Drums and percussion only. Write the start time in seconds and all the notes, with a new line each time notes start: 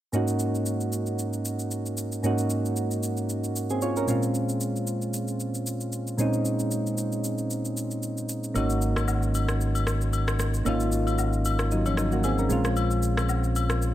0.13 shaker
0.28 shaker
0.39 shaker
0.55 shaker
0.66 shaker
0.81 shaker
0.92 shaker
1.06 shaker
1.19 shaker
1.33 shaker
1.45 shaker
1.59 shaker
1.71 shaker
1.86 shaker
1.97 shaker
2.12 shaker
2.24 shaker
2.38 shaker
2.50 shaker
2.65 shaker
2.76 shaker
2.91 shaker
3.03 shaker
3.17 shaker
3.29 shaker
3.44 shaker
3.56 shaker
3.70 shaker
3.82 shaker
3.96 shaker
4.08 shaker
4.23 shaker
4.34 shaker
4.49 shaker
4.61 shaker
4.76 shaker
4.87 shaker
5.02 shaker
5.14 shaker
5.28 shaker
5.40 shaker
5.54 shaker
5.66 shaker
5.81 shaker
5.92 shaker
6.07 shaker
6.19 shaker
6.33 shaker
6.45 shaker
6.59 shaker
6.71 shaker
6.87 shaker
6.98 shaker
7.12 shaker
7.24 shaker
7.38 shaker
7.50 shaker
7.65 shaker
7.77 shaker
7.91 shaker
8.03 shaker
8.17 shaker
8.29 shaker
8.44 shaker
8.55 high agogo, shaker
8.70 shaker
8.82 shaker
8.96 cross-stick, high agogo, shaker
9.08 low woodblock, shaker
9.23 shaker
9.35 high agogo, shaker
9.48 cross-stick, shaker
9.61 shaker
9.75 high agogo, shaker
9.87 cross-stick, shaker
10.01 shaker
10.13 high agogo, shaker
10.28 cross-stick, shaker
10.39 cross-stick, shaker
10.54 shaker
10.66 high agogo, shaker
10.80 shaker
10.92 shaker
11.07 high agogo, shaker
11.18 low woodblock, shaker
11.33 shaker
11.45 high agogo, shaker
11.59 cross-stick, shaker
11.71 shaker
11.86 high agogo, shaker
11.97 cross-stick, shaker
12.12 shaker
12.24 high agogo, shaker
12.38 shaker
12.50 shaker
12.65 cross-stick, shaker
12.76 high agogo, shaker
12.91 shaker
13.03 shaker
13.17 cross-stick, high agogo, shaker
13.29 low woodblock, shaker
13.44 shaker
13.56 high agogo, shaker
13.70 cross-stick, shaker
13.82 shaker